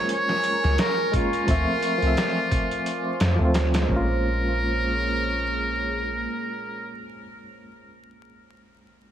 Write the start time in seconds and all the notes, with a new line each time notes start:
Already playing: G#3 A#3 C#4 F4 A#4 G#5 C#6
0.09 closed hi-hat
0.14 C#5
0.29 snare
0.44 closed hi-hat
0.64 C#2, snare
0.78 A#4, snare, closed hi-hat
1.12 G#3 A#3 C#4, kick, closed hi-hat
1.16 F4
1.33 closed hi-hat
1.46 D2 F3 A3 C4 C5 D6, kick, closed hi-hat
1.51 E5
1.83 closed hi-hat
1.98 F3 A3
2.02 C2 C4, closed hi-hat
2.07 E5
2.17 snare, closed hi-hat
2.51 kick, closed hi-hat
2.71 closed hi-hat
2.86 closed hi-hat
3.20 F2, snare, closed hi-hat
3.36 F3 A3
3.40 D2 C4
3.45 F4
3.54 snare, closed hi-hat
3.74 snare, closed hi-hat
3.82 G#3
3.87 A#1 A#3 G#4 A#4 C#5, kick
3.92 C#4
3.96 F4